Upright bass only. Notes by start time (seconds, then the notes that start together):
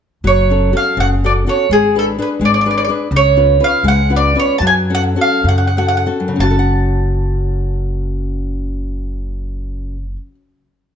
0.24 F#1
0.97 F#1
1.70 G#1
2.40 G#1
3.11 C#2
3.83 C#2
4.60 F#2
5.44 F#2
6.39 F#1